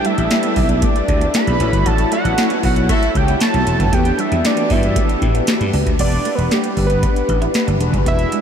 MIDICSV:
0, 0, Header, 1, 9, 480
1, 0, Start_track
1, 0, Tempo, 517241
1, 1722, Time_signature, 4, 2, 24, 8
1, 7805, End_track
2, 0, Start_track
2, 0, Title_t, "Analog synth lead"
2, 0, Program_c, 0, 81
2, 54, Note_on_c, 0, 76, 97
2, 776, Note_on_c, 0, 74, 88
2, 789, Note_off_c, 0, 76, 0
2, 1255, Note_on_c, 0, 83, 105
2, 1269, Note_off_c, 0, 74, 0
2, 1736, Note_on_c, 0, 81, 110
2, 1750, Note_off_c, 0, 83, 0
2, 1969, Note_off_c, 0, 81, 0
2, 1976, Note_on_c, 0, 78, 103
2, 2416, Note_off_c, 0, 78, 0
2, 2457, Note_on_c, 0, 78, 84
2, 2674, Note_off_c, 0, 78, 0
2, 2694, Note_on_c, 0, 76, 87
2, 2939, Note_on_c, 0, 79, 89
2, 2953, Note_off_c, 0, 76, 0
2, 3168, Note_off_c, 0, 79, 0
2, 3174, Note_on_c, 0, 81, 102
2, 3654, Note_on_c, 0, 79, 104
2, 3668, Note_off_c, 0, 81, 0
2, 3897, Note_on_c, 0, 76, 90
2, 3911, Note_off_c, 0, 79, 0
2, 4136, Note_on_c, 0, 74, 84
2, 4150, Note_off_c, 0, 76, 0
2, 4379, Note_on_c, 0, 76, 86
2, 4393, Note_off_c, 0, 74, 0
2, 5091, Note_off_c, 0, 76, 0
2, 5571, Note_on_c, 0, 74, 113
2, 5894, Note_on_c, 0, 71, 104
2, 5908, Note_off_c, 0, 74, 0
2, 6053, Note_on_c, 0, 67, 93
2, 6067, Note_off_c, 0, 71, 0
2, 6366, Note_off_c, 0, 67, 0
2, 6372, Note_on_c, 0, 71, 87
2, 7050, Note_off_c, 0, 71, 0
2, 7495, Note_on_c, 0, 76, 122
2, 7805, Note_off_c, 0, 76, 0
2, 7805, End_track
3, 0, Start_track
3, 0, Title_t, "Analog polysynth"
3, 0, Program_c, 1, 90
3, 0, Note_on_c, 1, 64, 67
3, 0, Note_on_c, 1, 67, 70
3, 0, Note_on_c, 1, 71, 63
3, 0, Note_on_c, 1, 74, 79
3, 1441, Note_off_c, 1, 64, 0
3, 1444, Note_off_c, 1, 67, 0
3, 1446, Note_off_c, 1, 71, 0
3, 1449, Note_off_c, 1, 74, 0
3, 1477, Note_on_c, 1, 64, 74
3, 1481, Note_on_c, 1, 66, 67
3, 1486, Note_on_c, 1, 69, 68
3, 1491, Note_on_c, 1, 73, 84
3, 3602, Note_off_c, 1, 64, 0
3, 3605, Note_off_c, 1, 66, 0
3, 3607, Note_off_c, 1, 69, 0
3, 3610, Note_off_c, 1, 73, 0
3, 3638, Note_on_c, 1, 62, 76
3, 3641, Note_on_c, 1, 66, 60
3, 3646, Note_on_c, 1, 67, 68
3, 3652, Note_on_c, 1, 71, 77
3, 5523, Note_off_c, 1, 62, 0
3, 5525, Note_off_c, 1, 66, 0
3, 5527, Note_off_c, 1, 67, 0
3, 5530, Note_off_c, 1, 71, 0
3, 5555, Note_on_c, 1, 62, 72
3, 5560, Note_on_c, 1, 78, 69
3, 5565, Note_on_c, 1, 67, 63
3, 5570, Note_on_c, 1, 71, 83
3, 7205, Note_off_c, 1, 62, 0
3, 7208, Note_off_c, 1, 78, 0
3, 7210, Note_off_c, 1, 67, 0
3, 7213, Note_off_c, 1, 71, 0
3, 7235, Note_on_c, 1, 62, 87
3, 7239, Note_on_c, 1, 66, 76
3, 7244, Note_on_c, 1, 68, 69
3, 7250, Note_on_c, 1, 71, 93
3, 7805, Note_off_c, 1, 62, 0
3, 7805, Note_off_c, 1, 66, 0
3, 7805, Note_off_c, 1, 68, 0
3, 7805, Note_off_c, 1, 71, 0
3, 7805, End_track
4, 0, Start_track
4, 0, Title_t, "Horn section"
4, 0, Program_c, 2, 61
4, 1964, Note_on_c, 2, 57, 90
4, 1964, Note_on_c, 2, 64, 91
4, 1964, Note_on_c, 2, 66, 83
4, 1964, Note_on_c, 2, 69, 97
4, 2059, Note_off_c, 2, 64, 0
4, 2059, Note_off_c, 2, 66, 0
4, 2060, Note_off_c, 2, 57, 0
4, 2060, Note_off_c, 2, 69, 0
4, 2084, Note_on_c, 2, 59, 76
4, 2084, Note_on_c, 2, 71, 83
4, 2085, Note_on_c, 2, 64, 80
4, 2085, Note_on_c, 2, 67, 74
4, 2179, Note_off_c, 2, 59, 0
4, 2179, Note_off_c, 2, 71, 0
4, 2180, Note_off_c, 2, 64, 0
4, 2180, Note_off_c, 2, 67, 0
4, 2203, Note_on_c, 2, 66, 101
4, 2204, Note_on_c, 2, 61, 107
4, 2204, Note_on_c, 2, 69, 98
4, 2204, Note_on_c, 2, 73, 116
4, 2395, Note_off_c, 2, 61, 0
4, 2395, Note_off_c, 2, 66, 0
4, 2395, Note_off_c, 2, 69, 0
4, 2395, Note_off_c, 2, 73, 0
4, 2684, Note_on_c, 2, 64, 102
4, 2684, Note_on_c, 2, 66, 113
4, 2685, Note_on_c, 2, 57, 113
4, 2685, Note_on_c, 2, 69, 123
4, 2875, Note_off_c, 2, 64, 0
4, 2876, Note_off_c, 2, 57, 0
4, 2876, Note_off_c, 2, 66, 0
4, 2876, Note_off_c, 2, 69, 0
4, 7805, End_track
5, 0, Start_track
5, 0, Title_t, "Clean electric guitar"
5, 0, Program_c, 3, 27
5, 45, Note_on_c, 3, 55, 76
5, 119, Note_off_c, 3, 55, 0
5, 405, Note_on_c, 3, 59, 77
5, 480, Note_off_c, 3, 59, 0
5, 525, Note_on_c, 3, 59, 75
5, 599, Note_off_c, 3, 59, 0
5, 765, Note_on_c, 3, 57, 101
5, 839, Note_off_c, 3, 57, 0
5, 1126, Note_on_c, 3, 59, 77
5, 1200, Note_off_c, 3, 59, 0
5, 1487, Note_on_c, 3, 61, 82
5, 1561, Note_off_c, 3, 61, 0
5, 1725, Note_on_c, 3, 66, 80
5, 1800, Note_off_c, 3, 66, 0
5, 1966, Note_on_c, 3, 57, 80
5, 2040, Note_off_c, 3, 57, 0
5, 2326, Note_on_c, 3, 59, 77
5, 2400, Note_off_c, 3, 59, 0
5, 2446, Note_on_c, 3, 59, 85
5, 2520, Note_off_c, 3, 59, 0
5, 2685, Note_on_c, 3, 57, 109
5, 2760, Note_off_c, 3, 57, 0
5, 3045, Note_on_c, 3, 59, 84
5, 3119, Note_off_c, 3, 59, 0
5, 3285, Note_on_c, 3, 57, 83
5, 3360, Note_off_c, 3, 57, 0
5, 3525, Note_on_c, 3, 59, 83
5, 3600, Note_off_c, 3, 59, 0
5, 3641, Note_on_c, 3, 57, 89
5, 3717, Note_off_c, 3, 57, 0
5, 3880, Note_on_c, 3, 55, 75
5, 3956, Note_off_c, 3, 55, 0
5, 4242, Note_on_c, 3, 59, 67
5, 4318, Note_off_c, 3, 59, 0
5, 4364, Note_on_c, 3, 59, 78
5, 4439, Note_off_c, 3, 59, 0
5, 4603, Note_on_c, 3, 57, 97
5, 4678, Note_off_c, 3, 57, 0
5, 4964, Note_on_c, 3, 59, 78
5, 5039, Note_off_c, 3, 59, 0
5, 5324, Note_on_c, 3, 62, 77
5, 5399, Note_off_c, 3, 62, 0
5, 5564, Note_on_c, 3, 59, 86
5, 5639, Note_off_c, 3, 59, 0
5, 5803, Note_on_c, 3, 57, 77
5, 5879, Note_off_c, 3, 57, 0
5, 6043, Note_on_c, 3, 59, 83
5, 6118, Note_off_c, 3, 59, 0
5, 6405, Note_on_c, 3, 59, 72
5, 6479, Note_off_c, 3, 59, 0
5, 6523, Note_on_c, 3, 62, 78
5, 6599, Note_off_c, 3, 62, 0
5, 6883, Note_on_c, 3, 64, 69
5, 6958, Note_off_c, 3, 64, 0
5, 7121, Note_on_c, 3, 62, 77
5, 7197, Note_off_c, 3, 62, 0
5, 7362, Note_on_c, 3, 62, 80
5, 7438, Note_off_c, 3, 62, 0
5, 7483, Note_on_c, 3, 59, 79
5, 7558, Note_off_c, 3, 59, 0
5, 7724, Note_on_c, 3, 56, 79
5, 7799, Note_off_c, 3, 56, 0
5, 7805, End_track
6, 0, Start_track
6, 0, Title_t, "String section"
6, 0, Program_c, 4, 48
6, 0, Note_on_c, 4, 55, 88
6, 0, Note_on_c, 4, 57, 72
6, 0, Note_on_c, 4, 62, 90
6, 1445, Note_off_c, 4, 62, 0
6, 1446, Note_off_c, 4, 55, 0
6, 1482, Note_on_c, 4, 64, 78
6, 1483, Note_on_c, 4, 54, 68
6, 3604, Note_off_c, 4, 57, 0
6, 3621, Note_off_c, 4, 54, 0
6, 3621, Note_off_c, 4, 64, 0
6, 3641, Note_on_c, 4, 59, 76
6, 3642, Note_on_c, 4, 52, 79
6, 3643, Note_on_c, 4, 55, 89
6, 3643, Note_on_c, 4, 62, 73
6, 5543, Note_off_c, 4, 52, 0
6, 5543, Note_off_c, 4, 55, 0
6, 5543, Note_off_c, 4, 59, 0
6, 5543, Note_off_c, 4, 62, 0
6, 7805, End_track
7, 0, Start_track
7, 0, Title_t, "Slap bass"
7, 0, Program_c, 5, 36
7, 167, Note_on_c, 5, 33, 107
7, 247, Note_off_c, 5, 33, 0
7, 524, Note_on_c, 5, 35, 97
7, 769, Note_off_c, 5, 35, 0
7, 1004, Note_on_c, 5, 38, 106
7, 1167, Note_off_c, 5, 38, 0
7, 1366, Note_on_c, 5, 35, 87
7, 1447, Note_off_c, 5, 35, 0
7, 1486, Note_on_c, 5, 33, 104
7, 1567, Note_off_c, 5, 33, 0
7, 1604, Note_on_c, 5, 31, 85
7, 1685, Note_off_c, 5, 31, 0
7, 1724, Note_on_c, 5, 33, 93
7, 1887, Note_off_c, 5, 33, 0
7, 2085, Note_on_c, 5, 33, 92
7, 2166, Note_off_c, 5, 33, 0
7, 2446, Note_on_c, 5, 35, 99
7, 2690, Note_off_c, 5, 35, 0
7, 2925, Note_on_c, 5, 37, 97
7, 3088, Note_off_c, 5, 37, 0
7, 3286, Note_on_c, 5, 35, 88
7, 3367, Note_off_c, 5, 35, 0
7, 3406, Note_on_c, 5, 28, 96
7, 3486, Note_off_c, 5, 28, 0
7, 3523, Note_on_c, 5, 30, 91
7, 3605, Note_off_c, 5, 30, 0
7, 3644, Note_on_c, 5, 40, 105
7, 3807, Note_off_c, 5, 40, 0
7, 4007, Note_on_c, 5, 40, 97
7, 4087, Note_off_c, 5, 40, 0
7, 4364, Note_on_c, 5, 43, 107
7, 4609, Note_off_c, 5, 43, 0
7, 4844, Note_on_c, 5, 45, 88
7, 5007, Note_off_c, 5, 45, 0
7, 5203, Note_on_c, 5, 43, 97
7, 5285, Note_off_c, 5, 43, 0
7, 5322, Note_on_c, 5, 37, 92
7, 5404, Note_off_c, 5, 37, 0
7, 5441, Note_on_c, 5, 38, 92
7, 5524, Note_off_c, 5, 38, 0
7, 5562, Note_on_c, 5, 28, 89
7, 5726, Note_off_c, 5, 28, 0
7, 5922, Note_on_c, 5, 28, 99
7, 6004, Note_off_c, 5, 28, 0
7, 6284, Note_on_c, 5, 31, 97
7, 6529, Note_off_c, 5, 31, 0
7, 6764, Note_on_c, 5, 33, 87
7, 6927, Note_off_c, 5, 33, 0
7, 7123, Note_on_c, 5, 31, 91
7, 7205, Note_off_c, 5, 31, 0
7, 7241, Note_on_c, 5, 28, 93
7, 7324, Note_off_c, 5, 28, 0
7, 7362, Note_on_c, 5, 30, 78
7, 7444, Note_off_c, 5, 30, 0
7, 7482, Note_on_c, 5, 28, 93
7, 7646, Note_off_c, 5, 28, 0
7, 7805, End_track
8, 0, Start_track
8, 0, Title_t, "Muted clean electric guitar strokes"
8, 287, Note_on_c, 9, 29, 40
8, 379, Note_off_c, 9, 29, 0
8, 885, Note_on_c, 9, 29, 55
8, 977, Note_off_c, 9, 29, 0
8, 1845, Note_on_c, 9, 29, 49
8, 1938, Note_off_c, 9, 29, 0
8, 2205, Note_on_c, 9, 29, 42
8, 2298, Note_off_c, 9, 29, 0
8, 2805, Note_on_c, 9, 29, 53
8, 2897, Note_off_c, 9, 29, 0
8, 3406, Note_on_c, 9, 29, 42
8, 3499, Note_off_c, 9, 29, 0
8, 3763, Note_on_c, 9, 29, 45
8, 3855, Note_off_c, 9, 29, 0
8, 4124, Note_on_c, 9, 29, 44
8, 4217, Note_off_c, 9, 29, 0
8, 4723, Note_on_c, 9, 29, 52
8, 4816, Note_off_c, 9, 29, 0
8, 5924, Note_on_c, 9, 29, 43
8, 6017, Note_off_c, 9, 29, 0
8, 6285, Note_on_c, 9, 29, 42
8, 6378, Note_off_c, 9, 29, 0
8, 6761, Note_on_c, 9, 29, 47
8, 6854, Note_off_c, 9, 29, 0
8, 7244, Note_on_c, 9, 29, 40
8, 7336, Note_off_c, 9, 29, 0
8, 7805, End_track
9, 0, Start_track
9, 0, Title_t, "Drums"
9, 43, Note_on_c, 9, 42, 74
9, 136, Note_off_c, 9, 42, 0
9, 166, Note_on_c, 9, 42, 48
9, 259, Note_off_c, 9, 42, 0
9, 284, Note_on_c, 9, 42, 97
9, 288, Note_on_c, 9, 38, 106
9, 377, Note_off_c, 9, 42, 0
9, 381, Note_off_c, 9, 38, 0
9, 398, Note_on_c, 9, 42, 64
9, 491, Note_off_c, 9, 42, 0
9, 521, Note_on_c, 9, 46, 73
9, 524, Note_on_c, 9, 36, 89
9, 614, Note_off_c, 9, 46, 0
9, 617, Note_off_c, 9, 36, 0
9, 641, Note_on_c, 9, 42, 50
9, 733, Note_off_c, 9, 42, 0
9, 762, Note_on_c, 9, 42, 107
9, 764, Note_on_c, 9, 36, 113
9, 855, Note_off_c, 9, 42, 0
9, 857, Note_off_c, 9, 36, 0
9, 888, Note_on_c, 9, 42, 51
9, 981, Note_off_c, 9, 42, 0
9, 1004, Note_on_c, 9, 36, 95
9, 1006, Note_on_c, 9, 42, 65
9, 1097, Note_off_c, 9, 36, 0
9, 1099, Note_off_c, 9, 42, 0
9, 1127, Note_on_c, 9, 42, 51
9, 1220, Note_off_c, 9, 42, 0
9, 1243, Note_on_c, 9, 42, 102
9, 1250, Note_on_c, 9, 38, 125
9, 1335, Note_off_c, 9, 42, 0
9, 1343, Note_off_c, 9, 38, 0
9, 1368, Note_on_c, 9, 42, 52
9, 1460, Note_off_c, 9, 42, 0
9, 1486, Note_on_c, 9, 42, 82
9, 1579, Note_off_c, 9, 42, 0
9, 1603, Note_on_c, 9, 36, 92
9, 1608, Note_on_c, 9, 42, 58
9, 1696, Note_off_c, 9, 36, 0
9, 1700, Note_off_c, 9, 42, 0
9, 1724, Note_on_c, 9, 36, 100
9, 1726, Note_on_c, 9, 42, 92
9, 1817, Note_off_c, 9, 36, 0
9, 1818, Note_off_c, 9, 42, 0
9, 1840, Note_on_c, 9, 42, 57
9, 1933, Note_off_c, 9, 42, 0
9, 1965, Note_on_c, 9, 42, 71
9, 2058, Note_off_c, 9, 42, 0
9, 2089, Note_on_c, 9, 42, 54
9, 2182, Note_off_c, 9, 42, 0
9, 2207, Note_on_c, 9, 42, 100
9, 2210, Note_on_c, 9, 38, 112
9, 2300, Note_off_c, 9, 42, 0
9, 2303, Note_off_c, 9, 38, 0
9, 2321, Note_on_c, 9, 42, 61
9, 2414, Note_off_c, 9, 42, 0
9, 2444, Note_on_c, 9, 46, 77
9, 2445, Note_on_c, 9, 36, 89
9, 2537, Note_off_c, 9, 46, 0
9, 2538, Note_off_c, 9, 36, 0
9, 2564, Note_on_c, 9, 42, 59
9, 2657, Note_off_c, 9, 42, 0
9, 2685, Note_on_c, 9, 36, 116
9, 2685, Note_on_c, 9, 42, 101
9, 2777, Note_off_c, 9, 42, 0
9, 2778, Note_off_c, 9, 36, 0
9, 2808, Note_on_c, 9, 42, 52
9, 2901, Note_off_c, 9, 42, 0
9, 2925, Note_on_c, 9, 36, 91
9, 2927, Note_on_c, 9, 42, 72
9, 3017, Note_off_c, 9, 36, 0
9, 3019, Note_off_c, 9, 42, 0
9, 3045, Note_on_c, 9, 42, 53
9, 3138, Note_off_c, 9, 42, 0
9, 3160, Note_on_c, 9, 42, 107
9, 3168, Note_on_c, 9, 38, 125
9, 3253, Note_off_c, 9, 42, 0
9, 3261, Note_off_c, 9, 38, 0
9, 3286, Note_on_c, 9, 42, 52
9, 3378, Note_off_c, 9, 42, 0
9, 3404, Note_on_c, 9, 42, 70
9, 3497, Note_off_c, 9, 42, 0
9, 3523, Note_on_c, 9, 36, 86
9, 3526, Note_on_c, 9, 42, 57
9, 3615, Note_off_c, 9, 36, 0
9, 3618, Note_off_c, 9, 42, 0
9, 3644, Note_on_c, 9, 36, 99
9, 3646, Note_on_c, 9, 42, 91
9, 3737, Note_off_c, 9, 36, 0
9, 3738, Note_off_c, 9, 42, 0
9, 3760, Note_on_c, 9, 42, 52
9, 3853, Note_off_c, 9, 42, 0
9, 3885, Note_on_c, 9, 42, 70
9, 3978, Note_off_c, 9, 42, 0
9, 4007, Note_on_c, 9, 42, 53
9, 4100, Note_off_c, 9, 42, 0
9, 4127, Note_on_c, 9, 42, 97
9, 4130, Note_on_c, 9, 38, 111
9, 4219, Note_off_c, 9, 42, 0
9, 4223, Note_off_c, 9, 38, 0
9, 4240, Note_on_c, 9, 42, 60
9, 4333, Note_off_c, 9, 42, 0
9, 4362, Note_on_c, 9, 46, 69
9, 4364, Note_on_c, 9, 36, 89
9, 4455, Note_off_c, 9, 46, 0
9, 4457, Note_off_c, 9, 36, 0
9, 4482, Note_on_c, 9, 42, 57
9, 4575, Note_off_c, 9, 42, 0
9, 4604, Note_on_c, 9, 36, 115
9, 4604, Note_on_c, 9, 42, 112
9, 4697, Note_off_c, 9, 36, 0
9, 4697, Note_off_c, 9, 42, 0
9, 4727, Note_on_c, 9, 42, 49
9, 4820, Note_off_c, 9, 42, 0
9, 4843, Note_on_c, 9, 36, 96
9, 4844, Note_on_c, 9, 42, 66
9, 4936, Note_off_c, 9, 36, 0
9, 4937, Note_off_c, 9, 42, 0
9, 4963, Note_on_c, 9, 42, 52
9, 5055, Note_off_c, 9, 42, 0
9, 5078, Note_on_c, 9, 42, 104
9, 5086, Note_on_c, 9, 38, 127
9, 5171, Note_off_c, 9, 42, 0
9, 5178, Note_off_c, 9, 38, 0
9, 5204, Note_on_c, 9, 42, 51
9, 5297, Note_off_c, 9, 42, 0
9, 5322, Note_on_c, 9, 46, 74
9, 5415, Note_off_c, 9, 46, 0
9, 5441, Note_on_c, 9, 36, 86
9, 5444, Note_on_c, 9, 42, 60
9, 5534, Note_off_c, 9, 36, 0
9, 5537, Note_off_c, 9, 42, 0
9, 5561, Note_on_c, 9, 42, 84
9, 5561, Note_on_c, 9, 49, 92
9, 5562, Note_on_c, 9, 36, 95
9, 5653, Note_off_c, 9, 49, 0
9, 5654, Note_off_c, 9, 42, 0
9, 5655, Note_off_c, 9, 36, 0
9, 5677, Note_on_c, 9, 42, 53
9, 5770, Note_off_c, 9, 42, 0
9, 5802, Note_on_c, 9, 42, 71
9, 5895, Note_off_c, 9, 42, 0
9, 5926, Note_on_c, 9, 42, 50
9, 6019, Note_off_c, 9, 42, 0
9, 6045, Note_on_c, 9, 42, 90
9, 6048, Note_on_c, 9, 38, 98
9, 6137, Note_off_c, 9, 42, 0
9, 6141, Note_off_c, 9, 38, 0
9, 6159, Note_on_c, 9, 42, 61
9, 6252, Note_off_c, 9, 42, 0
9, 6282, Note_on_c, 9, 46, 73
9, 6283, Note_on_c, 9, 36, 87
9, 6375, Note_off_c, 9, 46, 0
9, 6376, Note_off_c, 9, 36, 0
9, 6401, Note_on_c, 9, 42, 56
9, 6494, Note_off_c, 9, 42, 0
9, 6523, Note_on_c, 9, 42, 92
9, 6524, Note_on_c, 9, 36, 103
9, 6616, Note_off_c, 9, 36, 0
9, 6616, Note_off_c, 9, 42, 0
9, 6648, Note_on_c, 9, 42, 49
9, 6741, Note_off_c, 9, 42, 0
9, 6763, Note_on_c, 9, 36, 78
9, 6764, Note_on_c, 9, 42, 70
9, 6856, Note_off_c, 9, 36, 0
9, 6857, Note_off_c, 9, 42, 0
9, 6884, Note_on_c, 9, 42, 47
9, 6977, Note_off_c, 9, 42, 0
9, 6999, Note_on_c, 9, 42, 97
9, 7007, Note_on_c, 9, 38, 126
9, 7092, Note_off_c, 9, 42, 0
9, 7100, Note_off_c, 9, 38, 0
9, 7126, Note_on_c, 9, 42, 48
9, 7219, Note_off_c, 9, 42, 0
9, 7243, Note_on_c, 9, 42, 74
9, 7336, Note_off_c, 9, 42, 0
9, 7361, Note_on_c, 9, 36, 92
9, 7365, Note_on_c, 9, 42, 48
9, 7454, Note_off_c, 9, 36, 0
9, 7458, Note_off_c, 9, 42, 0
9, 7482, Note_on_c, 9, 36, 94
9, 7483, Note_on_c, 9, 42, 80
9, 7575, Note_off_c, 9, 36, 0
9, 7576, Note_off_c, 9, 42, 0
9, 7598, Note_on_c, 9, 42, 52
9, 7691, Note_off_c, 9, 42, 0
9, 7722, Note_on_c, 9, 42, 68
9, 7805, Note_off_c, 9, 42, 0
9, 7805, End_track
0, 0, End_of_file